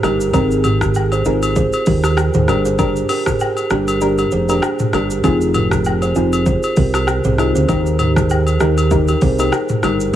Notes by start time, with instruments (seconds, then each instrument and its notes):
0.03 fingered electric bass G1, synth pluck A#3 D#4 G4 A#4, kalimba G4 A#4, cross-stick, high agogo, shaker
0.21 shaker
0.33 fingered electric bass G#1, synth pluck C4 D#4 G#4 A#4, kalimba D#4 G#4, kick, high agogo, shaker
0.51 shaker
0.64 kalimba G4 A#4, mid tom, high agogo, shaker
0.81 kick, cross-stick, mid tom, shaker
0.94 low woodblock, shaker
1.12 kalimba G#4 C5, high agogo, shaker
1.25 fingered electric bass G#1, synth pluck C4 D#4 G#4 A#4, kalimba F4 G#4, shaker
1.43 high agogo, shaker
1.56 kalimba G#4 C5, kick, shaker
1.73 high agogo, shaker
1.86 fingered electric bass D#2, kalimba G4 A#4, kick, open hi-hat, shaker
2.04 cross-stick, high agogo, shaker
2.17 cross-stick, low woodblock, shaker
2.34 fingered electric bass D#2, kalimba G#4 C5, mid tom, shaker
2.48 fingered electric bass G1, synth pluck A#3 D4 G4 A#4, cross-stick, high agogo, shaker
2.65 kalimba G#4 C5, shaker
2.79 synth pluck A#3 D4 G4 A#4, kick, high agogo, shaker
2.96 shaker
3.09 kalimba G4 A#4, open hi-hat, high agogo, shaker
3.26 kalimba G#4 C5, kick, cross-stick, mid tom, shaker
3.40 low woodblock, shaker
3.57 high agogo, shaker
3.70 fingered electric bass G1, synth pluck A#3 D4 G4 A#4, kalimba G4 A#4, cross-stick, shaker
3.88 high agogo, shaker
4.01 synth pluck A#3 D4 G4 A#4, shaker
4.18 kalimba G4 A#4, high agogo, shaker
4.31 fingered electric bass F1, kalimba G#4 C5, shaker
4.49 synth pluck A#3 D4 G4 A#4, high agogo, shaker
4.62 cross-stick, low woodblock, shaker
4.79 mid tom, shaker
4.93 fingered electric bass G1, synth pluck A#3 D4 G4 A#4, kalimba G4 A#4, cross-stick, high agogo, shaker
5.11 shaker
5.24 fingered electric bass F1, synth pluck C4 D#4 F4 G#4, kalimba F4 G#4, kick, high agogo, shaker
5.41 shaker
5.54 kalimba G4 A#4, mid tom, high agogo, shaker
5.71 kick, cross-stick, mid tom, shaker
5.85 low woodblock, shaker
6.02 kalimba G#4 C5, high agogo, shaker
6.15 fingered electric bass F1, synth pluck C4 D#4 F4 G#4, kalimba F4 G#4, shaker
6.33 high agogo, shaker
6.46 kalimba G#4 C5, kick, shaker
6.63 high agogo, shaker
6.77 fingered electric bass C2, kalimba G4 A#4, kick, open hi-hat, shaker
6.94 cross-stick, high agogo, shaker
7.07 cross-stick, low woodblock, shaker
7.24 fingered electric bass C2, kalimba G#4 C5, mid tom, shaker
7.38 synth pluck C4 D#4 F4 G#4, cross-stick, high agogo, shaker
7.55 fingered electric bass D2, kalimba G#4 C5, shaker
7.69 fingered electric bass D#2, synth pluck A#3 D#4 G4 A#4, kick, high agogo, shaker
7.86 shaker
7.99 kalimba G4 A#4, mid tom, high agogo, shaker
8.16 kalimba G#4 C5, kick, cross-stick, mid tom, shaker
8.30 low woodblock, shaker
8.47 high agogo, shaker
8.60 fingered electric bass D#2, synth pluck A#3 D#4 G4 A#4, kalimba G4 A#4, cross-stick, shaker
8.78 high agogo, shaker
8.91 synth pluck A#3 D#4 G4 A#4, kick, shaker
9.08 kalimba G4 A#4, high agogo, shaker
9.21 fingered electric bass C2, kalimba G#4 C5, kick, open hi-hat, shaker
9.39 synth pluck A#3 D#4 G4 A#4, high agogo, shaker
9.52 cross-stick, low woodblock, shaker
9.69 mid tom, shaker
9.83 fingered electric bass G1, synth pluck A#3 D#4 G4 A#4, kalimba G4 A#4, cross-stick, high agogo, shaker
10.00 shaker